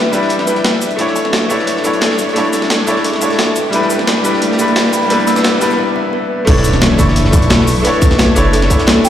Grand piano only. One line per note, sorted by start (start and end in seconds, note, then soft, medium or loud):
0.00 0.12 G3 loud
0.00 0.12 D4 medium
0.00 0.13 E4 medium
0.00 0.14 B4 loud
0.12 0.43 G3 medium
0.12 0.45 D4 medium
0.12 0.46 E4 medium
0.12 0.46 B4 loud
0.45 0.96 G3 medium
0.45 0.96 D4 medium
0.45 0.97 E4 medium
0.50 0.98 B4 medium
0.96 1.47 A3 medium
0.96 1.48 D4 medium
0.96 1.49 E4 medium
1.01 1.49 C#5 loud
1.49 1.80 A3 medium
1.49 1.82 D4 medium
1.49 1.83 E4 medium
1.49 1.83 C#5 loud
1.82 2.32 A3 medium
1.82 2.33 D4 medium
1.82 2.34 E4 medium
1.87 2.35 C#5 loud
2.33 2.84 A3 medium
2.33 2.85 D4 medium
2.33 2.86 E4 medium
2.38 2.87 C#5 loud
2.86 3.19 A3 medium
2.86 3.19 D4 medium
2.86 3.20 E4 medium
2.86 3.20 C#5 loud
3.20 3.54 A3 medium
3.20 3.55 D4 medium
3.20 3.55 E4 medium
3.20 3.56 C#5 medium
3.70 4.21 G3 medium
3.70 4.22 D4 medium
3.70 4.23 E4 medium
3.76 4.24 B4 loud
4.23 4.55 G3 medium
4.23 4.57 D4 medium
4.23 4.57 E4 medium
4.23 4.58 B4 loud
4.56 5.06 G3 medium
4.56 5.08 D4 medium
4.56 5.09 E4 medium
4.61 5.10 B4 loud
5.08 5.58 G3 medium
5.08 5.59 D4 medium
5.08 5.60 E4 medium
5.13 5.61 B4 loud
5.60 5.78 G3 medium
5.60 5.79 D4 medium
5.60 5.79 E4 medium
5.60 5.80 B4 loud
6.45 6.96 A3 loud
6.45 6.96 D4 medium
6.45 6.97 E4 medium
6.50 6.98 C#5 loud
6.98 7.29 A3 medium
6.98 7.31 D4 medium
6.98 7.31 E4 medium
6.98 7.32 C#6 loud
7.31 7.80 A3 medium
7.31 7.82 D4 medium
7.31 7.83 E4 medium
7.36 7.84 C#6 loud
7.82 8.33 A3 medium
7.82 8.34 D4 medium
7.82 8.34 E4 medium
7.87 8.35 C#5 loud
8.35 8.68 A3 medium
8.35 8.68 D4 medium
8.35 8.69 E4 medium
8.35 8.69 C#5 loud
8.69 9.03 A3 medium
8.69 9.03 D4 medium
8.69 9.04 E4 medium
8.69 9.04 C#5 loud